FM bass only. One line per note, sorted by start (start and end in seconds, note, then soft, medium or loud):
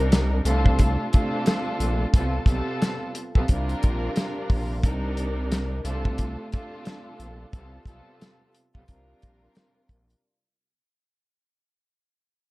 0.00 0.41 C2 loud
0.45 0.98 C2 loud
1.80 2.06 A#1 medium
2.14 2.40 C2 loud
2.46 2.62 B1 medium
3.35 3.46 B1 medium
3.49 3.75 C2 loud
3.84 4.09 A#1 medium
4.50 4.85 A#1 medium
4.84 5.81 C2 loud
5.85 6.37 C2 medium
7.20 7.46 A#1 medium
7.53 7.79 C2 loud
7.86 8.02 B1 medium
8.75 8.85 B1 medium
8.89 9.15 C2 loud
9.23 9.49 A#1 medium
9.89 10.15 A#1 medium